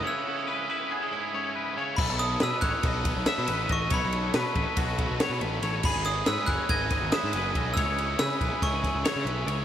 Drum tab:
CC |---------|x--------|---------|x--------|
RD |---------|-xxxxxxxx|xxxxxxxxx|-xxxxxxxx|
SD |---------|-oooo-o--|--o---o-o|-oooooo--|
BD |---------|o--ooo--o|o--ooo---|o--ooo--o|

CC |---------|
RD |xxxxxxxxx|
SD |--o-ooo--|
BD |o--ooo---|